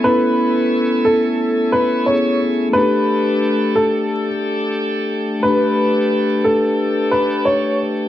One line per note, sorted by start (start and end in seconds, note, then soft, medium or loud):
0.00 8.08 A3 medium
0.00 2.00 B3 medium
0.00 2.02 C#4 medium
0.00 2.69 C#5 medium
0.00 2.69 E5 medium
0.00 2.69 G#5 medium
0.04 2.03 E4 medium
0.04 1.01 B4 loud
0.08 2.04 A4 medium
1.05 1.68 A4 medium
1.72 2.03 B4 medium
2.03 2.72 B3 soft
2.03 2.73 C#4 soft
2.03 2.74 E4 soft
2.03 2.37 C#5 medium
2.08 2.75 G#4 medium
2.69 5.37 A3 medium
2.69 5.38 D4 medium
2.73 8.09 D4 medium
2.73 5.40 G4 medium
2.73 3.71 B4 loud
2.73 8.09 G5 medium
2.73 8.09 A5 medium
2.78 5.41 A4 medium
3.75 4.27 A4 medium
5.40 8.07 A3 medium
5.40 8.09 D4 medium
5.40 6.40 B4 medium
5.46 8.09 G4 medium
5.46 8.09 B4 medium
6.44 7.08 A4 medium
7.11 7.42 B4 medium
7.45 7.76 C#5 medium